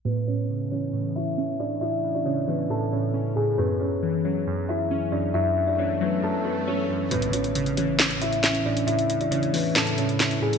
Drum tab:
HH |----------------|----------------|----------------|----------------|
CP |----------------|----------------|----------------|----------------|
SD |----------------|----------------|----------------|----------------|

HH |xxxxxxx-xxxxxx-x|xxxxxxo-xxxxxx-x|
CP |--------x---x---|--------x---x---|
SD |--------o---o---|--------o---o---|